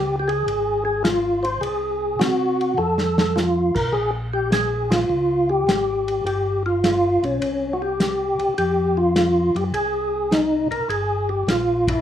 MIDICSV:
0, 0, Header, 1, 4, 480
1, 0, Start_track
1, 0, Key_signature, -4, "minor"
1, 0, Tempo, 579151
1, 1349, Time_signature, 4, 2, 24, 8
1, 9956, End_track
2, 0, Start_track
2, 0, Title_t, "Tonewheel organ"
2, 0, Program_c, 0, 16
2, 0, Note_on_c, 0, 67, 88
2, 131, Note_off_c, 0, 67, 0
2, 161, Note_on_c, 0, 67, 70
2, 231, Note_on_c, 0, 68, 93
2, 239, Note_off_c, 0, 67, 0
2, 694, Note_off_c, 0, 68, 0
2, 704, Note_on_c, 0, 68, 87
2, 853, Note_off_c, 0, 68, 0
2, 864, Note_on_c, 0, 65, 82
2, 1183, Note_on_c, 0, 72, 80
2, 1203, Note_off_c, 0, 65, 0
2, 1334, Note_on_c, 0, 68, 83
2, 1348, Note_off_c, 0, 72, 0
2, 1818, Note_on_c, 0, 66, 83
2, 1836, Note_off_c, 0, 68, 0
2, 2303, Note_on_c, 0, 69, 86
2, 2318, Note_off_c, 0, 66, 0
2, 2783, Note_on_c, 0, 65, 79
2, 2800, Note_off_c, 0, 69, 0
2, 3106, Note_on_c, 0, 70, 79
2, 3122, Note_off_c, 0, 65, 0
2, 3254, Note_on_c, 0, 68, 87
2, 3269, Note_off_c, 0, 70, 0
2, 3404, Note_off_c, 0, 68, 0
2, 3592, Note_on_c, 0, 67, 84
2, 3736, Note_off_c, 0, 67, 0
2, 3754, Note_on_c, 0, 68, 85
2, 4063, Note_on_c, 0, 65, 82
2, 4087, Note_off_c, 0, 68, 0
2, 4555, Note_on_c, 0, 67, 88
2, 4564, Note_off_c, 0, 65, 0
2, 5182, Note_off_c, 0, 67, 0
2, 5192, Note_on_c, 0, 67, 86
2, 5494, Note_off_c, 0, 67, 0
2, 5519, Note_on_c, 0, 65, 84
2, 6003, Note_on_c, 0, 61, 82
2, 6012, Note_off_c, 0, 65, 0
2, 6408, Note_on_c, 0, 66, 68
2, 6412, Note_off_c, 0, 61, 0
2, 6481, Note_off_c, 0, 66, 0
2, 6482, Note_on_c, 0, 67, 84
2, 7079, Note_off_c, 0, 67, 0
2, 7112, Note_on_c, 0, 67, 84
2, 7437, Note_on_c, 0, 65, 96
2, 7447, Note_off_c, 0, 67, 0
2, 7923, Note_on_c, 0, 67, 80
2, 7931, Note_off_c, 0, 65, 0
2, 7991, Note_off_c, 0, 67, 0
2, 8072, Note_on_c, 0, 68, 79
2, 8547, Note_on_c, 0, 63, 77
2, 8565, Note_off_c, 0, 68, 0
2, 8852, Note_off_c, 0, 63, 0
2, 8877, Note_on_c, 0, 70, 77
2, 9020, Note_off_c, 0, 70, 0
2, 9031, Note_on_c, 0, 68, 83
2, 9359, Note_on_c, 0, 67, 76
2, 9367, Note_off_c, 0, 68, 0
2, 9516, Note_off_c, 0, 67, 0
2, 9527, Note_on_c, 0, 65, 74
2, 9855, Note_off_c, 0, 65, 0
2, 9858, Note_on_c, 0, 64, 71
2, 9956, Note_off_c, 0, 64, 0
2, 9956, End_track
3, 0, Start_track
3, 0, Title_t, "Tonewheel organ"
3, 0, Program_c, 1, 16
3, 0, Note_on_c, 1, 37, 75
3, 355, Note_off_c, 1, 37, 0
3, 385, Note_on_c, 1, 32, 79
3, 1314, Note_off_c, 1, 32, 0
3, 1338, Note_on_c, 1, 36, 75
3, 1790, Note_off_c, 1, 36, 0
3, 1820, Note_on_c, 1, 48, 70
3, 2271, Note_off_c, 1, 48, 0
3, 2299, Note_on_c, 1, 41, 76
3, 3077, Note_off_c, 1, 41, 0
3, 3112, Note_on_c, 1, 35, 65
3, 3252, Note_on_c, 1, 34, 71
3, 3256, Note_off_c, 1, 35, 0
3, 4187, Note_off_c, 1, 34, 0
3, 4223, Note_on_c, 1, 37, 77
3, 4673, Note_off_c, 1, 37, 0
3, 4699, Note_on_c, 1, 32, 70
3, 5151, Note_off_c, 1, 32, 0
3, 5175, Note_on_c, 1, 31, 74
3, 5955, Note_off_c, 1, 31, 0
3, 5991, Note_on_c, 1, 35, 66
3, 6136, Note_off_c, 1, 35, 0
3, 6146, Note_on_c, 1, 36, 81
3, 6921, Note_off_c, 1, 36, 0
3, 6952, Note_on_c, 1, 36, 36
3, 7030, Note_off_c, 1, 36, 0
3, 7110, Note_on_c, 1, 41, 83
3, 7883, Note_off_c, 1, 41, 0
3, 7914, Note_on_c, 1, 42, 69
3, 8058, Note_off_c, 1, 42, 0
3, 8059, Note_on_c, 1, 36, 81
3, 8838, Note_off_c, 1, 36, 0
3, 8874, Note_on_c, 1, 36, 39
3, 8952, Note_off_c, 1, 36, 0
3, 9027, Note_on_c, 1, 31, 74
3, 9476, Note_off_c, 1, 31, 0
3, 9506, Note_on_c, 1, 34, 73
3, 9955, Note_off_c, 1, 34, 0
3, 9956, End_track
4, 0, Start_track
4, 0, Title_t, "Drums"
4, 241, Note_on_c, 9, 51, 38
4, 323, Note_off_c, 9, 51, 0
4, 397, Note_on_c, 9, 51, 54
4, 480, Note_off_c, 9, 51, 0
4, 867, Note_on_c, 9, 38, 60
4, 869, Note_on_c, 9, 44, 54
4, 869, Note_on_c, 9, 51, 64
4, 950, Note_off_c, 9, 38, 0
4, 952, Note_off_c, 9, 44, 0
4, 952, Note_off_c, 9, 51, 0
4, 1198, Note_on_c, 9, 51, 41
4, 1281, Note_off_c, 9, 51, 0
4, 1351, Note_on_c, 9, 51, 55
4, 1433, Note_off_c, 9, 51, 0
4, 1831, Note_on_c, 9, 38, 62
4, 1833, Note_on_c, 9, 44, 53
4, 1833, Note_on_c, 9, 51, 69
4, 1914, Note_off_c, 9, 38, 0
4, 1915, Note_off_c, 9, 44, 0
4, 1915, Note_off_c, 9, 51, 0
4, 2161, Note_on_c, 9, 51, 38
4, 2244, Note_off_c, 9, 51, 0
4, 2471, Note_on_c, 9, 38, 50
4, 2554, Note_off_c, 9, 38, 0
4, 2636, Note_on_c, 9, 38, 70
4, 2719, Note_off_c, 9, 38, 0
4, 2794, Note_on_c, 9, 38, 50
4, 2795, Note_on_c, 9, 44, 49
4, 2877, Note_off_c, 9, 38, 0
4, 2878, Note_off_c, 9, 44, 0
4, 3113, Note_on_c, 9, 36, 68
4, 3113, Note_on_c, 9, 49, 65
4, 3196, Note_off_c, 9, 36, 0
4, 3196, Note_off_c, 9, 49, 0
4, 3746, Note_on_c, 9, 38, 62
4, 3748, Note_on_c, 9, 44, 57
4, 3748, Note_on_c, 9, 51, 62
4, 3829, Note_off_c, 9, 38, 0
4, 3831, Note_off_c, 9, 44, 0
4, 3831, Note_off_c, 9, 51, 0
4, 4074, Note_on_c, 9, 38, 70
4, 4075, Note_on_c, 9, 51, 65
4, 4157, Note_off_c, 9, 38, 0
4, 4158, Note_off_c, 9, 51, 0
4, 4712, Note_on_c, 9, 38, 60
4, 4714, Note_on_c, 9, 44, 47
4, 4714, Note_on_c, 9, 51, 57
4, 4795, Note_off_c, 9, 38, 0
4, 4796, Note_off_c, 9, 44, 0
4, 4796, Note_off_c, 9, 51, 0
4, 5039, Note_on_c, 9, 51, 44
4, 5122, Note_off_c, 9, 51, 0
4, 5193, Note_on_c, 9, 51, 51
4, 5276, Note_off_c, 9, 51, 0
4, 5667, Note_on_c, 9, 38, 61
4, 5669, Note_on_c, 9, 44, 51
4, 5669, Note_on_c, 9, 51, 66
4, 5750, Note_off_c, 9, 38, 0
4, 5752, Note_off_c, 9, 44, 0
4, 5752, Note_off_c, 9, 51, 0
4, 5997, Note_on_c, 9, 51, 42
4, 6079, Note_off_c, 9, 51, 0
4, 6148, Note_on_c, 9, 51, 59
4, 6231, Note_off_c, 9, 51, 0
4, 6631, Note_on_c, 9, 38, 63
4, 6633, Note_on_c, 9, 44, 51
4, 6633, Note_on_c, 9, 51, 62
4, 6714, Note_off_c, 9, 38, 0
4, 6715, Note_off_c, 9, 44, 0
4, 6715, Note_off_c, 9, 51, 0
4, 6957, Note_on_c, 9, 51, 41
4, 7040, Note_off_c, 9, 51, 0
4, 7110, Note_on_c, 9, 51, 52
4, 7193, Note_off_c, 9, 51, 0
4, 7590, Note_on_c, 9, 38, 65
4, 7592, Note_on_c, 9, 44, 52
4, 7592, Note_on_c, 9, 51, 65
4, 7673, Note_off_c, 9, 38, 0
4, 7675, Note_off_c, 9, 44, 0
4, 7675, Note_off_c, 9, 51, 0
4, 7924, Note_on_c, 9, 51, 40
4, 8007, Note_off_c, 9, 51, 0
4, 8072, Note_on_c, 9, 51, 55
4, 8155, Note_off_c, 9, 51, 0
4, 8553, Note_on_c, 9, 38, 60
4, 8555, Note_on_c, 9, 44, 60
4, 8555, Note_on_c, 9, 51, 56
4, 8636, Note_off_c, 9, 38, 0
4, 8638, Note_off_c, 9, 44, 0
4, 8638, Note_off_c, 9, 51, 0
4, 8881, Note_on_c, 9, 51, 43
4, 8964, Note_off_c, 9, 51, 0
4, 9036, Note_on_c, 9, 51, 54
4, 9119, Note_off_c, 9, 51, 0
4, 9517, Note_on_c, 9, 38, 60
4, 9519, Note_on_c, 9, 44, 50
4, 9519, Note_on_c, 9, 51, 67
4, 9600, Note_off_c, 9, 38, 0
4, 9601, Note_off_c, 9, 44, 0
4, 9601, Note_off_c, 9, 51, 0
4, 9842, Note_on_c, 9, 36, 73
4, 9849, Note_on_c, 9, 51, 70
4, 9925, Note_off_c, 9, 36, 0
4, 9931, Note_off_c, 9, 51, 0
4, 9956, End_track
0, 0, End_of_file